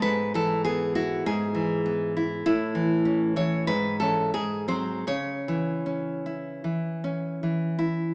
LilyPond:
\new Staff \with { instrumentName = "Nylon-string guitar" } { \time 4/4 \key e \major \tempo 4 = 93 << { b'8 a'8 gis'8 fis'8 gis'4. r8 | \key cis \minor e'4. cis''8 b'8 a'8 gis'8 bis'8 | cis''2.~ cis''8 r8 | } \\ { gis,8 e8 b8 e'8 gis,8 e8 b8 e'8 | a,8 e8 cis'8 e8 gis,8 <e cis'>8 gis,8 <fis bis>8 | cis8 e8 cis'8 e'8 e8 cis'8 e8 e'8 | } >> }